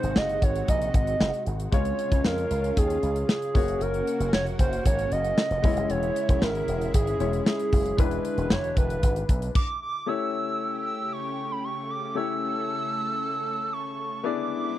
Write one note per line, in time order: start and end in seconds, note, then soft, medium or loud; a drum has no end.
0.00 0.13 G#1 medium
0.00 1.70 C3 medium
0.00 1.42 G#3 medium
0.00 1.69 G#3 medium
0.00 1.42 D#4 medium
0.00 1.43 F#4 medium
0.00 1.71 F#4 medium
0.00 0.18 C5 loud
0.00 1.43 C5 medium
0.00 closed hi-hat medium
0.16 0.36 F#1 medium
0.16 0.45 D#5 loud
0.16 snare loud
0.29 closed hi-hat soft
0.42 0.62 G#1 medium
0.42 0.69 C#5 loud
0.42 kick medium
0.42 closed hi-hat medium
0.56 closed hi-hat medium
0.68 0.88 A#1 medium
0.68 0.93 D#5 loud
0.68 kick medium
0.68 closed hi-hat medium
0.82 closed hi-hat medium
0.94 1.14 G#1 medium
0.94 1.43 D#5 loud
0.94 kick medium
0.94 closed hi-hat medium
1.07 closed hi-hat medium
1.21 1.30 F#1 medium
1.21 snare loud
1.34 closed hi-hat soft
1.46 1.66 G#1 medium
1.46 closed hi-hat medium
1.60 closed hi-hat medium
1.72 1.92 C#2 medium
1.72 7.95 C#3 medium
1.72 3.51 G#3 medium
1.72 3.51 C#4 medium
1.72 3.53 C#4 medium
1.72 3.53 F4 medium
1.72 3.52 F4 medium
1.72 2.27 C#5 loud
1.72 3.52 C#5 medium
1.72 kick loud
1.72 closed hi-hat medium
1.85 closed hi-hat soft
1.99 closed hi-hat medium
2.12 2.22 C#2 medium
2.12 kick medium
2.12 closed hi-hat soft
2.24 2.44 F2 medium
2.24 2.79 A#4 medium
2.24 snare loud
2.38 closed hi-hat soft
2.51 2.70 C#2 medium
2.51 closed hi-hat medium
2.64 closed hi-hat medium
2.77 2.96 D#2 medium
2.77 3.29 G#4 medium
2.77 kick medium
2.77 closed hi-hat medium
2.90 closed hi-hat medium
3.03 3.22 C#2 medium
3.03 closed hi-hat medium
3.16 closed hi-hat medium
3.29 3.83 G#4 medium
3.29 snare loud
3.42 closed hi-hat soft
3.54 3.75 F#1 medium
3.54 5.59 A#3 medium
3.54 5.62 A#3 medium
3.54 5.60 C#4 medium
3.54 5.62 F#4 medium
3.54 5.60 F#4 medium
3.54 5.60 C#5 medium
3.54 kick loud
3.54 open hi-hat medium
3.68 closed hi-hat medium
3.81 4.01 F#1 loud
3.81 4.33 A#4 loud
3.81 closed hi-hat medium
3.94 closed hi-hat soft
4.07 closed hi-hat medium
4.20 4.30 F#1 medium
4.20 closed hi-hat soft
4.33 4.53 F1 medium
4.33 4.45 C#5 loud
4.33 snare loud
4.46 closed hi-hat soft
4.59 4.79 F#1 medium
4.59 4.84 C5 medium
4.59 kick medium
4.59 closed hi-hat medium
4.73 closed hi-hat medium
4.85 5.05 G#1 medium
4.85 5.13 C#5 loud
4.85 kick medium
4.85 closed hi-hat medium
4.99 closed hi-hat medium
5.12 5.31 F#1 medium
5.12 5.92 D#5 loud
5.12 closed hi-hat medium
5.24 closed hi-hat medium
5.38 snare loud
5.51 5.60 F1 medium
5.51 closed hi-hat medium
5.62 5.74 E1 medium
5.62 7.17 G#3 medium
5.62 9.51 G#3 medium
5.62 7.17 C#4 medium
5.62 9.51 E4 medium
5.62 7.17 E4 medium
5.62 7.18 C#5 medium
5.62 kick loud
5.62 open hi-hat medium
5.76 5.86 F#1 medium
5.76 closed hi-hat medium
5.90 6.09 E1 loud
5.90 6.44 C#5 loud
5.90 closed hi-hat medium
6.03 closed hi-hat soft
6.16 closed hi-hat medium
6.29 6.39 E1 medium
6.29 kick medium
6.29 closed hi-hat soft
6.42 6.61 G#1 medium
6.42 6.94 A#4 loud
6.42 snare loud
6.55 closed hi-hat soft
6.68 6.88 E1 medium
6.68 closed hi-hat medium
6.81 closed hi-hat medium
6.94 7.14 G#1 medium
6.94 7.43 G#4 medium
6.94 kick medium
6.94 closed hi-hat loud
7.07 closed hi-hat medium
7.20 7.40 E1 medium
7.20 7.96 G#3 soft
7.20 7.99 C#4 soft
7.20 7.98 E4 soft
7.20 7.99 C#5 medium
7.20 closed hi-hat medium
7.33 closed hi-hat medium
7.46 8.01 G#4 medium
7.46 snare loud
7.60 closed hi-hat soft
7.72 7.92 F#1 medium
7.72 kick medium
7.72 open hi-hat medium
7.86 closed hi-hat medium
7.97 8.18 E1 loud
7.97 9.54 D3 medium
7.97 9.51 G#3 medium
7.97 9.52 D4 medium
7.97 9.52 E4 medium
7.97 8.25 B4 medium
7.97 9.53 B4 medium
7.97 kick loud
7.97 closed hi-hat medium
8.11 closed hi-hat soft
8.25 8.53 B4 medium
8.25 closed hi-hat medium
8.38 8.47 E1 medium
8.38 closed hi-hat soft
8.50 8.70 E1 medium
8.50 8.77 C#5 medium
8.50 snare loud
8.64 closed hi-hat soft
8.77 8.96 E1 medium
8.77 9.52 B4 medium
8.77 kick medium
8.77 closed hi-hat medium
8.90 closed hi-hat medium
9.03 9.23 G#1 medium
9.03 kick medium
9.03 closed hi-hat loud
9.16 closed hi-hat medium
9.29 9.49 B1 medium
9.29 kick medium
9.29 closed hi-hat medium
9.42 closed hi-hat medium
9.55 9.80 D6 loud
9.55 kick loud
9.55 crash medium
9.82 10.09 D6 loud
10.06 14.21 C#3 medium
10.06 12.12 A3 medium
10.06 14.21 A3 medium
10.06 12.12 C#4 medium
10.06 12.12 E4 medium
10.06 12.14 G4 medium
10.06 12.13 G4 medium
10.06 12.13 C#5 medium
10.06 10.86 E6 loud
10.86 11.14 E6 loud
11.12 11.53 C#6 loud
11.52 11.66 B5 medium
11.64 11.92 C#6 loud
11.90 12.16 D6 loud
12.15 14.20 A3 medium
12.15 14.21 C#4 medium
12.15 14.21 E4 medium
12.15 14.21 G4 medium
12.15 14.23 A4 medium
12.15 14.21 C#5 medium
12.15 13.74 E6 loud
13.73 14.26 C#6 loud
14.24 14.79 D3 medium
14.24 14.79 G#3 medium
14.24 14.79 B3 medium
14.24 14.79 D4 medium
14.24 14.79 E4 medium
14.24 14.79 G#4 medium
14.24 14.79 D5 medium
14.24 14.79 D6 loud